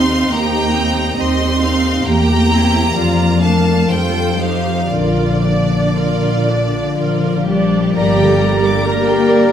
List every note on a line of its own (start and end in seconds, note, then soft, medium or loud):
0.00 0.21 D#2 soft
0.00 2.09 D#3 soft
0.00 0.94 G3 soft
0.00 0.29 C4 medium
0.00 0.30 C4 soft
0.00 0.32 C4 soft
0.00 0.31 D#4 soft
0.00 1.83 D#4 soft
0.00 0.32 F5 soft
0.00 0.32 C6 medium
0.10 0.52 G4 soft
0.31 1.07 D#2 soft
0.31 1.18 A#3 medium
0.31 0.72 C4 soft
0.31 0.73 D#4 soft
0.31 0.75 G4 soft
0.31 1.18 G5 medium
0.31 1.19 A#5 medium
0.53 2.71 G4 soft
0.73 1.16 C4 soft
0.73 1.18 C4 soft
0.73 1.16 D#4 soft
0.95 1.37 G3 soft
1.17 1.96 D#2 soft
1.17 1.60 C4 soft
1.17 2.05 C4 medium
1.17 1.59 D#4 soft
1.17 1.58 G4 soft
1.17 1.61 D#5 soft
1.17 2.07 C6 medium
1.39 1.82 G3 soft
1.61 2.50 C4 soft
1.61 2.06 C4 soft
1.61 2.06 D#4 soft
1.61 2.05 F5 soft
1.83 2.28 G3 soft
2.06 2.85 E2 soft
2.06 2.99 E3 soft
2.06 2.48 A#3 soft
2.06 3.42 A#3 medium
2.06 2.48 G4 soft
2.06 2.96 G5 medium
2.06 3.42 A#5 medium
2.29 3.00 G3 soft
2.50 2.96 C4 soft
2.50 3.00 C4 soft
2.50 2.96 E4 soft
2.73 2.99 G4 soft
2.95 3.79 F2 soft
2.95 3.88 F3 soft
2.95 3.39 A#3 soft
2.95 3.39 F4 soft
2.95 3.41 D5 soft
3.19 3.94 A#3 soft
3.40 3.90 A3 soft
3.40 3.94 D4 soft
3.40 3.91 D4 soft
3.40 3.91 A#4 soft
3.40 3.89 F5 soft
3.40 3.90 A5 medium
3.66 4.64 F4 soft
3.89 4.79 F2 soft
3.89 5.16 F3 soft
3.89 4.40 G3 soft
3.89 4.37 F4 soft
3.89 4.37 A4 soft
3.89 4.91 C5 soft
3.89 4.40 G5 medium
4.14 4.95 A3 soft
4.39 4.91 F3 soft
4.39 4.96 D#4 soft
4.39 4.92 D#4 soft
4.39 4.92 G4 soft
4.39 4.91 F5 medium
4.65 5.94 F4 soft
4.90 5.82 A#1 soft
4.90 8.00 A#2 soft
4.90 7.44 D3 soft
4.90 5.40 F4 soft
4.90 5.40 A#4 soft
4.90 7.44 D5 soft
4.90 7.49 D5 medium
5.17 6.95 F3 soft
5.43 6.69 A#3 soft
5.43 5.94 D4 soft
5.43 5.95 D5 soft
5.69 6.19 D4 soft
5.94 6.85 A#1 soft
5.94 6.46 F4 soft
5.94 6.44 F4 soft
5.94 6.46 A#4 soft
6.20 8.62 D4 soft
6.46 6.97 D4 soft
6.46 8.00 F4 soft
6.46 6.97 D5 soft
6.71 7.21 A#3 soft
6.96 7.86 A#1 soft
6.96 7.47 F3 soft
6.96 7.46 F4 soft
6.96 7.45 A#4 soft
7.22 7.72 A#3 soft
7.48 8.00 F3 soft
7.48 8.82 G3 medium
7.48 7.98 D4 soft
7.48 8.82 G4 soft
7.48 8.88 G4 soft
7.48 7.98 D5 soft
7.73 8.40 A#3 soft
7.96 8.71 G1 medium
7.96 9.52 G2 soft
7.96 8.83 G3 soft
7.96 8.83 A#3 soft
7.96 8.83 G4 soft
7.96 9.52 G4 soft
7.96 9.52 A#4 soft
7.96 8.18 D5 soft
7.96 8.83 D5 soft
7.96 8.82 A#5 soft
7.96 8.40 A#5 soft
8.19 9.52 D3 soft
8.19 8.41 G5 soft
8.41 9.52 A#3 soft
8.41 8.64 A#5 soft
8.63 9.52 D4 soft
8.63 8.86 D6 soft
8.86 9.52 G3 soft
8.86 9.52 A#3 medium
8.86 9.52 A#3 soft
8.86 9.52 G4 soft
8.86 9.52 A#4 medium
8.86 9.52 D5 soft
8.86 9.09 A#5 soft
8.86 9.52 A#5 medium
9.08 9.52 A#4 soft
9.08 9.31 G5 soft
9.31 9.52 D5 soft